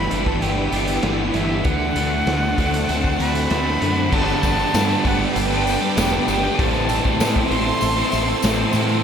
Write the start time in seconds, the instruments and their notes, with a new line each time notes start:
Already playing: overdriven electric guitar G2 E3 G3, clean electric guitar E3 B3, ambient pad D4 G4 B4 E5, flute B5
0.11 fingered electric bass G1, overdriven electric guitar G3, clean electric guitar D4, closed hi-hat
0.26 flute A5, kick
0.42 fingered electric bass G1, clean electric guitar E3, overdriven electric guitar B3, flute G5, closed hi-hat
0.72 fingered electric bass G1, overdriven electric guitar G3 G4, clean electric guitar B3, closed hi-hat
0.87 closed hi-hat
1.03 fingered electric bass G1, clean electric guitar E3, overdriven electric guitar E3 B3, snare, closed hi-hat
1.33 fingered electric bass G1, overdriven electric guitar E3 B3, clean electric guitar B3, flute E5, snare, closed hi-hat
1.64 fingered electric bass D2, overdriven electric guitar D3, clean electric guitar A3, ambient pad D4 A4 C5 F#5, flute F#5, kick, closed hi-hat
1.95 fingered electric bass D2, clean electric guitar A3, overdriven electric guitar A3, closed hi-hat
2.27 fingered electric bass D2, overdriven electric guitar D3, clean electric guitar A3, snare, closed hi-hat
2.58 fingered electric bass D2, overdriven electric guitar A3, clean electric guitar C4, kick, closed hi-hat
2.74 closed hi-hat
2.89 fingered electric bass D2, clean electric guitar A3, overdriven electric guitar C4, closed hi-hat
3.04 kick
3.19 fingered electric bass D2, clean electric guitar A3, overdriven electric guitar A3 F#4, flute B5, closed hi-hat
3.35 closed hi-hat
3.50 fingered electric bass D2, overdriven electric guitar D3 C4, clean electric guitar A3, snare, closed hi-hat
3.81 fingered electric bass F#2, overdriven electric guitar D3 C4, clean electric guitar A3, snare, closed hi-hat
4.11 fingered electric bass G1, overdriven electric guitar G2 D3 G3 B3 D4 G4 B4, clean electric guitar G3, ambient pad G4 B4 D5 A5, flute A5, kick, crash
4.28 tambourine
4.43 fingered electric bass G1, overdriven electric guitar G3 B3 D4 G4, clean electric guitar A4, kick, open hi-hat, tambourine
4.56 overdriven electric guitar G3 B3 D4 G4 B4, tambourine
4.71 overdriven electric guitar G2 D3 G3 B3 D4 G4, fingered electric bass G2, clean electric guitar D4, snare, open hi-hat, tambourine
4.76 overdriven electric guitar B4
4.91 tambourine
5.03 fingered electric bass G1, overdriven electric guitar G3 B3 D4 G4 B4, clean electric guitar B3, kick, open hi-hat
5.07 flute F#5
5.20 overdriven electric guitar G3 B3 D4 G4, muted overdriven electric guitar stroke
5.35 fingered electric bass G1, clean electric guitar A4, flute G5, open hi-hat, tambourine
5.50 overdriven electric guitar G3 B3 D4 G4 B4, tambourine
5.66 overdriven electric guitar G3 B3 D4 B4, clean electric guitar D4, open hi-hat, tambourine
5.81 overdriven electric guitar G3 B3 D4 G4, muted overdriven electric guitar stroke
5.97 fingered electric bass E1, overdriven electric guitar G2 D3 G3 B3 D4 G4 B4, clean electric guitar B3, flute G5, snare, open hi-hat, tambourine
6.12 overdriven electric guitar G3 B3 D4 G4
6.28 fingered electric bass G1, clean electric guitar G3, overdriven electric guitar G3 B3 D4 G4 B4, flute G5, snare, open hi-hat, tambourine
6.43 overdriven electric guitar G3 B3 D4 G4, tambourine
6.58 fingered electric bass A1, overdriven electric guitar A2 E3 A3 C4 E4 A4 C5, clean electric guitar C4, ambient pad A4 C5 E5 C6, flute A5, kick, open hi-hat
6.74 tambourine
6.89 overdriven electric guitar E3 C4 E4 A4, clean electric guitar A4, open hi-hat, tambourine
7.04 overdriven electric guitar C4 E4 A4 C5, kick, tambourine
7.20 fingered electric bass A2, overdriven electric guitar A2 E3 A3 C4 E4 A4 C5, clean electric guitar E4, snare, open hi-hat, tambourine
7.36 kick
7.50 fingered electric bass A1, overdriven electric guitar E3 A3 C4 E4 A4 C5, clean electric guitar C4, flute C6, open hi-hat
7.66 overdriven electric guitar C4 E4 A4, muted overdriven electric guitar stroke
7.81 fingered electric bass A1, clean electric guitar A4, open hi-hat, tambourine
7.96 overdriven electric guitar C4 E4 A4 C5, tambourine
8.12 fingered electric bass A1, overdriven electric guitar A3 C4 E4 C5, clean electric guitar E4, open hi-hat, tambourine
8.27 overdriven electric guitar C4 E4 A4, muted overdriven electric guitar stroke, tambourine
8.43 fingered electric bass A1, overdriven electric guitar A2 E3 A3 C4 E4 A4 C5, clean electric guitar C4, snare, open hi-hat, tambourine
8.58 overdriven electric guitar C4 E4 A4
8.72 fingered electric bass A2, overdriven electric guitar E3 A3 C4 E4 A4 C5, clean electric guitar C4, open hi-hat, tambourine
8.88 overdriven electric guitar C4 E4 A4, tambourine